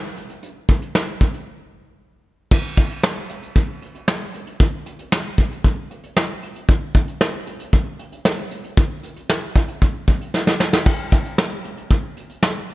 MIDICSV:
0, 0, Header, 1, 2, 480
1, 0, Start_track
1, 0, Tempo, 521739
1, 393, Time_signature, 4, 2, 24, 8
1, 11722, End_track
2, 0, Start_track
2, 0, Title_t, "Drums"
2, 153, Note_on_c, 9, 42, 78
2, 245, Note_off_c, 9, 42, 0
2, 271, Note_on_c, 9, 42, 53
2, 363, Note_off_c, 9, 42, 0
2, 393, Note_on_c, 9, 42, 71
2, 485, Note_off_c, 9, 42, 0
2, 633, Note_on_c, 9, 36, 92
2, 633, Note_on_c, 9, 42, 82
2, 725, Note_off_c, 9, 36, 0
2, 725, Note_off_c, 9, 42, 0
2, 752, Note_on_c, 9, 42, 52
2, 844, Note_off_c, 9, 42, 0
2, 874, Note_on_c, 9, 38, 109
2, 966, Note_off_c, 9, 38, 0
2, 1113, Note_on_c, 9, 36, 89
2, 1114, Note_on_c, 9, 42, 68
2, 1205, Note_off_c, 9, 36, 0
2, 1206, Note_off_c, 9, 42, 0
2, 1234, Note_on_c, 9, 42, 56
2, 1326, Note_off_c, 9, 42, 0
2, 2313, Note_on_c, 9, 36, 120
2, 2313, Note_on_c, 9, 49, 91
2, 2405, Note_off_c, 9, 36, 0
2, 2405, Note_off_c, 9, 49, 0
2, 2552, Note_on_c, 9, 36, 91
2, 2552, Note_on_c, 9, 42, 84
2, 2644, Note_off_c, 9, 36, 0
2, 2644, Note_off_c, 9, 42, 0
2, 2669, Note_on_c, 9, 42, 53
2, 2761, Note_off_c, 9, 42, 0
2, 2791, Note_on_c, 9, 38, 114
2, 2793, Note_on_c, 9, 42, 80
2, 2883, Note_off_c, 9, 38, 0
2, 2885, Note_off_c, 9, 42, 0
2, 3033, Note_on_c, 9, 42, 72
2, 3125, Note_off_c, 9, 42, 0
2, 3152, Note_on_c, 9, 42, 59
2, 3244, Note_off_c, 9, 42, 0
2, 3272, Note_on_c, 9, 42, 70
2, 3273, Note_on_c, 9, 36, 92
2, 3364, Note_off_c, 9, 42, 0
2, 3365, Note_off_c, 9, 36, 0
2, 3514, Note_on_c, 9, 42, 70
2, 3606, Note_off_c, 9, 42, 0
2, 3632, Note_on_c, 9, 42, 53
2, 3724, Note_off_c, 9, 42, 0
2, 3751, Note_on_c, 9, 42, 78
2, 3752, Note_on_c, 9, 38, 101
2, 3843, Note_off_c, 9, 42, 0
2, 3844, Note_off_c, 9, 38, 0
2, 3992, Note_on_c, 9, 42, 79
2, 4084, Note_off_c, 9, 42, 0
2, 4109, Note_on_c, 9, 42, 54
2, 4201, Note_off_c, 9, 42, 0
2, 4232, Note_on_c, 9, 42, 76
2, 4233, Note_on_c, 9, 36, 116
2, 4324, Note_off_c, 9, 42, 0
2, 4325, Note_off_c, 9, 36, 0
2, 4472, Note_on_c, 9, 42, 84
2, 4564, Note_off_c, 9, 42, 0
2, 4590, Note_on_c, 9, 42, 55
2, 4682, Note_off_c, 9, 42, 0
2, 4712, Note_on_c, 9, 38, 114
2, 4714, Note_on_c, 9, 42, 77
2, 4804, Note_off_c, 9, 38, 0
2, 4806, Note_off_c, 9, 42, 0
2, 4951, Note_on_c, 9, 36, 88
2, 4952, Note_on_c, 9, 42, 70
2, 5043, Note_off_c, 9, 36, 0
2, 5044, Note_off_c, 9, 42, 0
2, 5071, Note_on_c, 9, 42, 56
2, 5163, Note_off_c, 9, 42, 0
2, 5192, Note_on_c, 9, 42, 75
2, 5193, Note_on_c, 9, 36, 90
2, 5284, Note_off_c, 9, 42, 0
2, 5285, Note_off_c, 9, 36, 0
2, 5434, Note_on_c, 9, 42, 68
2, 5526, Note_off_c, 9, 42, 0
2, 5552, Note_on_c, 9, 42, 53
2, 5644, Note_off_c, 9, 42, 0
2, 5672, Note_on_c, 9, 38, 109
2, 5672, Note_on_c, 9, 42, 82
2, 5764, Note_off_c, 9, 38, 0
2, 5764, Note_off_c, 9, 42, 0
2, 5912, Note_on_c, 9, 42, 77
2, 6004, Note_off_c, 9, 42, 0
2, 6030, Note_on_c, 9, 42, 54
2, 6122, Note_off_c, 9, 42, 0
2, 6152, Note_on_c, 9, 36, 119
2, 6152, Note_on_c, 9, 42, 72
2, 6244, Note_off_c, 9, 36, 0
2, 6244, Note_off_c, 9, 42, 0
2, 6391, Note_on_c, 9, 42, 84
2, 6392, Note_on_c, 9, 36, 94
2, 6483, Note_off_c, 9, 42, 0
2, 6484, Note_off_c, 9, 36, 0
2, 6510, Note_on_c, 9, 42, 53
2, 6602, Note_off_c, 9, 42, 0
2, 6632, Note_on_c, 9, 38, 116
2, 6634, Note_on_c, 9, 42, 82
2, 6724, Note_off_c, 9, 38, 0
2, 6726, Note_off_c, 9, 42, 0
2, 6871, Note_on_c, 9, 42, 68
2, 6963, Note_off_c, 9, 42, 0
2, 6990, Note_on_c, 9, 42, 55
2, 7082, Note_off_c, 9, 42, 0
2, 7111, Note_on_c, 9, 42, 75
2, 7112, Note_on_c, 9, 36, 94
2, 7203, Note_off_c, 9, 42, 0
2, 7204, Note_off_c, 9, 36, 0
2, 7354, Note_on_c, 9, 42, 71
2, 7446, Note_off_c, 9, 42, 0
2, 7471, Note_on_c, 9, 42, 53
2, 7563, Note_off_c, 9, 42, 0
2, 7591, Note_on_c, 9, 38, 109
2, 7591, Note_on_c, 9, 42, 82
2, 7683, Note_off_c, 9, 38, 0
2, 7683, Note_off_c, 9, 42, 0
2, 7830, Note_on_c, 9, 42, 77
2, 7922, Note_off_c, 9, 42, 0
2, 7948, Note_on_c, 9, 42, 55
2, 8040, Note_off_c, 9, 42, 0
2, 8071, Note_on_c, 9, 42, 76
2, 8072, Note_on_c, 9, 36, 118
2, 8163, Note_off_c, 9, 42, 0
2, 8164, Note_off_c, 9, 36, 0
2, 8311, Note_on_c, 9, 42, 84
2, 8403, Note_off_c, 9, 42, 0
2, 8430, Note_on_c, 9, 42, 54
2, 8522, Note_off_c, 9, 42, 0
2, 8552, Note_on_c, 9, 38, 111
2, 8554, Note_on_c, 9, 42, 82
2, 8644, Note_off_c, 9, 38, 0
2, 8646, Note_off_c, 9, 42, 0
2, 8791, Note_on_c, 9, 36, 93
2, 8791, Note_on_c, 9, 46, 51
2, 8883, Note_off_c, 9, 36, 0
2, 8883, Note_off_c, 9, 46, 0
2, 8911, Note_on_c, 9, 42, 58
2, 9003, Note_off_c, 9, 42, 0
2, 9032, Note_on_c, 9, 42, 72
2, 9033, Note_on_c, 9, 36, 89
2, 9124, Note_off_c, 9, 42, 0
2, 9125, Note_off_c, 9, 36, 0
2, 9272, Note_on_c, 9, 36, 84
2, 9274, Note_on_c, 9, 42, 68
2, 9364, Note_off_c, 9, 36, 0
2, 9366, Note_off_c, 9, 42, 0
2, 9392, Note_on_c, 9, 42, 54
2, 9484, Note_off_c, 9, 42, 0
2, 9513, Note_on_c, 9, 38, 58
2, 9605, Note_off_c, 9, 38, 0
2, 9633, Note_on_c, 9, 38, 65
2, 9725, Note_off_c, 9, 38, 0
2, 9753, Note_on_c, 9, 38, 91
2, 9845, Note_off_c, 9, 38, 0
2, 9873, Note_on_c, 9, 38, 93
2, 9965, Note_off_c, 9, 38, 0
2, 9992, Note_on_c, 9, 57, 84
2, 9993, Note_on_c, 9, 36, 117
2, 10084, Note_off_c, 9, 57, 0
2, 10085, Note_off_c, 9, 36, 0
2, 10232, Note_on_c, 9, 42, 84
2, 10233, Note_on_c, 9, 36, 98
2, 10324, Note_off_c, 9, 42, 0
2, 10325, Note_off_c, 9, 36, 0
2, 10350, Note_on_c, 9, 42, 54
2, 10442, Note_off_c, 9, 42, 0
2, 10471, Note_on_c, 9, 38, 116
2, 10473, Note_on_c, 9, 42, 79
2, 10563, Note_off_c, 9, 38, 0
2, 10565, Note_off_c, 9, 42, 0
2, 10712, Note_on_c, 9, 42, 70
2, 10804, Note_off_c, 9, 42, 0
2, 10831, Note_on_c, 9, 42, 57
2, 10923, Note_off_c, 9, 42, 0
2, 10952, Note_on_c, 9, 42, 74
2, 10953, Note_on_c, 9, 36, 93
2, 11044, Note_off_c, 9, 42, 0
2, 11045, Note_off_c, 9, 36, 0
2, 11195, Note_on_c, 9, 42, 69
2, 11287, Note_off_c, 9, 42, 0
2, 11312, Note_on_c, 9, 42, 53
2, 11404, Note_off_c, 9, 42, 0
2, 11431, Note_on_c, 9, 42, 83
2, 11432, Note_on_c, 9, 38, 109
2, 11523, Note_off_c, 9, 42, 0
2, 11524, Note_off_c, 9, 38, 0
2, 11671, Note_on_c, 9, 46, 80
2, 11722, Note_off_c, 9, 46, 0
2, 11722, End_track
0, 0, End_of_file